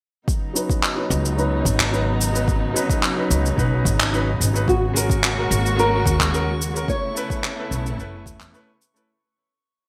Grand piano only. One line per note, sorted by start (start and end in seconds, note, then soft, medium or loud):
0.53 0.93 F#3 medium
0.53 0.93 C#4 medium
0.53 0.94 D#4 medium
0.53 0.94 B4 medium
0.95 1.34 F#3 medium
0.95 1.34 C#4 medium
0.95 1.35 D#4 medium
0.95 1.35 B4 medium
1.36 1.89 F#3 medium
1.36 1.89 C#4 medium
1.36 1.90 D#4 medium
1.36 1.90 B4 loud
1.91 2.08 F#3 medium
1.91 2.09 C#4 medium
1.91 2.09 D#4 medium
1.91 2.10 B4 medium
2.32 2.49 F#3 medium
2.32 2.49 C#4 medium
2.32 2.50 D#4 medium
2.32 2.50 B4 medium
2.74 3.13 F#3 medium
2.74 3.13 C#4 medium
2.74 3.14 D#4 medium
2.74 3.14 B4 medium
3.15 3.54 F#3 medium
3.15 3.54 C#4 medium
3.15 3.55 D#4 medium
3.15 3.55 B4 medium
3.56 4.09 F#3 medium
3.56 4.09 C#4 medium
3.56 4.10 D#4 medium
3.56 4.10 B4 loud
4.11 4.28 F#3 medium
4.11 4.29 C#4 medium
4.11 4.29 D#4 medium
4.11 4.30 B4 medium
4.53 4.65 F#3 medium
4.53 4.66 C#4 medium
4.53 4.66 D#4 medium
4.53 4.67 B4 medium
4.93 5.33 G#3 medium
4.93 5.34 C#4 medium
4.93 5.34 F#4 medium
4.93 5.35 A#4 medium
5.36 5.74 G#3 medium
5.36 5.75 C#4 medium
5.36 5.75 F#4 medium
5.36 5.76 A#4 medium
5.76 6.29 G#3 medium
5.76 6.30 C#4 medium
5.76 6.30 F#4 medium
5.76 6.31 A#4 loud
6.32 6.48 G#3 medium
6.32 6.49 C#4 medium
6.32 6.49 F#4 medium
6.32 6.50 A#4 loud
6.74 6.86 G#3 medium
6.74 6.86 C#4 medium
6.74 6.87 F#4 medium
6.74 6.88 A#4 medium
7.15 7.54 A3 medium
7.15 7.54 C#4 medium
7.15 7.55 E4 medium
7.15 7.55 B4 loud
7.56 7.95 A3 medium
7.56 7.95 C#4 medium
7.56 7.96 E4 medium
7.56 7.96 B4 medium
7.97 8.50 A3 medium
7.97 8.50 C#4 medium
7.97 8.51 E4 medium
7.97 8.51 B4 loud
8.52 8.69 A3 medium
8.52 8.69 C#4 medium
8.52 8.70 E4 medium
8.52 8.70 B4 loud
8.94 9.06 A3 medium
8.94 9.07 C#4 medium
8.94 9.07 E4 medium
8.94 9.08 B4 medium